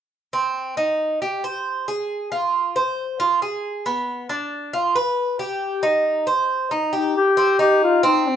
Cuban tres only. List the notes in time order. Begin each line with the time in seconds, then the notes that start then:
0.33 C4
0.77 D#4
1.22 G4
1.44 C5
1.88 G#4
2.32 F4
2.76 C5
3.20 F4
3.42 G#4
3.86 B3
4.29 D4
4.73 F4
4.95 B4
5.39 G4
5.83 D#4
6.27 C5
6.71 D#4
6.93 G4
7.37 C4
7.59 D#4
8.03 C4